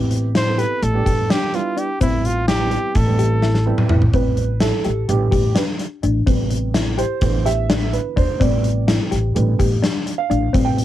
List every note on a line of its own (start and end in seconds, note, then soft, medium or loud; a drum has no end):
0.00 0.62 A1 medium
0.00 0.28 B3 medium
0.00 0.28 C4 medium
0.00 0.29 C4 medium
0.00 0.28 E4 medium
0.00 0.28 G4 medium
0.11 closed hi-hat medium
0.11 shaker soft
0.35 0.56 E4 medium
0.35 0.60 C5 loud
0.35 snare loud
0.35 closed hi-hat medium
0.46 0.79 B3 medium
0.46 0.79 C4 medium
0.46 0.79 E4 medium
0.46 0.80 A4 medium
0.58 1.00 G4 medium
0.58 0.85 B4 medium
0.58 closed hi-hat medium
0.58 shaker soft
0.82 1.01 A1 loud
0.82 1.32 A4 medium
0.82 closed hi-hat medium
0.93 1.34 G3 medium
0.93 1.35 B3 medium
0.93 1.35 D4 medium
0.93 1.35 G4 medium
1.06 1.27 G4 medium
1.06 kick medium
1.06 closed hi-hat soft
1.06 shaker soft
1.30 1.71 D4 medium
1.30 1.57 G4 medium
1.30 snare loud
1.30 closed hi-hat medium
1.52 1.85 G3 medium
1.52 1.86 B3 medium
1.52 1.86 D4 medium
1.52 1.86 E4 medium
1.52 1.80 F4 medium
1.52 closed hi-hat soft
1.77 1.98 D4 medium
1.77 2.01 G4 medium
1.77 closed hi-hat medium
1.77 shaker soft
2.01 2.75 A1 medium
2.01 2.42 G3 medium
2.01 2.42 B3 soft
2.01 2.42 C4 medium
2.01 2.27 E4 medium
2.01 2.42 E4 medium
2.01 kick medium
2.01 closed hi-hat medium
2.01 shaker soft
2.25 2.47 F4 medium
2.25 closed hi-hat soft
2.48 2.69 E4 medium
2.48 2.98 G4 medium
2.48 snare medium
2.48 closed hi-hat medium
2.48 shaker soft
2.59 2.92 G3 medium
2.59 2.92 B3 soft
2.59 2.93 C4 medium
2.59 2.93 E4 medium
2.71 3.13 G4 medium
2.71 closed hi-hat medium
2.95 3.70 A1 loud
2.95 3.91 A4 medium
2.95 kick medium
2.95 closed hi-hat medium
3.07 3.48 G3 medium
3.07 3.48 B3 medium
3.07 3.48 C4 medium
3.07 3.49 E4 medium
3.19 3.40 G4 medium
3.19 closed hi-hat medium
3.19 shaker soft
3.43 3.85 E4 medium
3.43 snare medium
3.55 snare soft
3.66 3.99 G3 medium
3.66 3.99 B3 medium
3.66 3.99 C4 medium
3.66 4.00 E4 medium
3.78 mid tom medium
3.90 4.09 A1 medium
3.90 4.11 E4 medium
3.90 mid tom medium
4.02 floor tom medium
4.14 4.70 A1 medium
4.14 4.45 C3 soft
4.14 4.46 G3 soft
4.14 4.46 B3 soft
4.14 4.56 C4 medium
4.14 4.63 B4 medium
4.14 kick medium
4.14 closed hi-hat medium
4.37 closed hi-hat soft
4.61 4.82 E4 medium
4.61 5.10 A4 medium
4.61 snare loud
4.61 closed hi-hat medium
4.85 5.04 A1 medium
4.85 5.27 G4 medium
4.85 closed hi-hat medium
5.08 5.27 A1 loud
5.08 5.40 D3 soft
5.08 5.40 G3 soft
5.08 5.41 B3 medium
5.08 5.58 G4 medium
5.08 closed hi-hat medium
5.31 5.51 A1 medium
5.31 5.53 G4 medium
5.31 kick medium
5.31 closed hi-hat soft
5.55 5.97 D4 medium
5.55 5.63 B4 medium
5.55 snare loud
5.55 closed hi-hat medium
5.79 snare soft
5.79 closed hi-hat medium
6.03 6.22 A1 medium
6.03 6.24 D4 medium
6.03 closed hi-hat medium
6.26 7.02 A1 medium
6.26 6.94 C3 soft
6.26 6.95 G3 soft
6.26 6.95 B3 medium
6.26 6.69 C4 medium
6.26 kick loud
6.26 closed hi-hat medium
6.50 closed hi-hat medium
6.74 6.95 E4 medium
6.74 snare medium
6.74 closed hi-hat medium
6.98 7.40 G4 medium
6.98 7.47 C5 medium
6.98 closed hi-hat medium
7.21 7.96 A1 medium
7.21 8.37 D3 medium
7.21 8.37 E3 soft
7.21 8.37 B3 medium
7.21 kick loud
7.21 closed hi-hat medium
7.46 7.67 G4 medium
7.46 7.95 E5 loud
7.46 snare soft
7.46 closed hi-hat medium
7.70 8.11 D4 medium
7.70 snare loud
7.70 closed hi-hat medium
7.93 8.18 B4 medium
7.93 closed hi-hat medium
8.16 8.26 E2 medium
8.16 8.38 D4 medium
8.16 8.39 C5 medium
8.16 kick medium
8.16 closed hi-hat medium
8.40 8.97 A1 medium
8.40 9.31 C3 soft
8.40 9.32 G3 soft
8.40 9.32 B3 medium
8.40 8.82 C4 medium
8.40 8.85 D5 medium
8.40 kick medium
8.40 closed hi-hat medium
8.64 closed hi-hat soft
8.88 9.09 E4 medium
8.88 snare loud
8.88 closed hi-hat medium
9.11 9.31 A1 medium
9.11 9.53 G4 medium
9.11 snare soft
9.11 closed hi-hat medium
9.35 9.54 A1 loud
9.35 9.67 D3 medium
9.35 9.67 G3 soft
9.35 9.67 B3 medium
9.35 closed hi-hat medium
9.59 9.78 A1 medium
9.59 9.80 G4 medium
9.59 kick medium
9.59 closed hi-hat medium
9.83 10.24 D4 medium
9.83 snare loud
9.83 closed hi-hat medium
10.07 closed hi-hat medium
10.18 10.67 F5 medium
10.30 10.49 A1 medium
10.30 10.51 D4 medium
10.30 closed hi-hat medium
10.53 10.85 A1 medium
10.53 10.85 C3 soft
10.53 10.85 G3 soft
10.53 10.85 B3 soft
10.53 10.85 C4 loud
10.53 kick medium
10.53 closed hi-hat medium
10.65 10.85 G5 loud
10.78 closed hi-hat medium